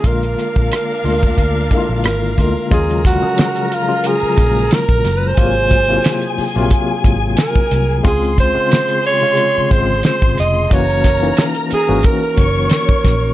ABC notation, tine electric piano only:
X:1
M:4/4
L:1/16
Q:"Swing 16ths" 1/4=90
K:Ebm
V:1 name="Tine electric piano" clef=bass
[=D,A,B,F]4- [D,A,B,F] z [D,A,B,F]3 z [D,A,B,_F=F]3 z [D,A,B,F]2 | [D,G,A,F]3 [D,F,G,A,A]3 z [D,G,A,F]3 [D,G,A,B,]4- [D,G,A,B,] z | [=C,G,B,F]3 [C,G,B,_F=F]3 z [C,G,B,F]6- [C,G,B,F] z2 | [D,A,=CF]3 [D,A,CF]3 z [=C,D,A,F]3 [D,A,CF]4- [D,A,CF] z |
[_F,B,DG]3 [F,B,DE]3 z [F,B,DG]6- [F,B,DG] z2 |]